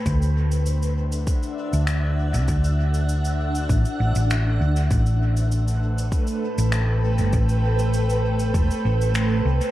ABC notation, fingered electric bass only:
X:1
M:4/4
L:1/16
Q:1/4=99
K:Ador
V:1 name="Fingered electric bass" clef=bass
D,,8 z3 D,,4 C,, | D,,8 A,,, z A,,, A,,,3 D,,2 | A,,,8 z3 A,,,4 G,,, | A,,,8 E,,, z A,,,4 C,, z |]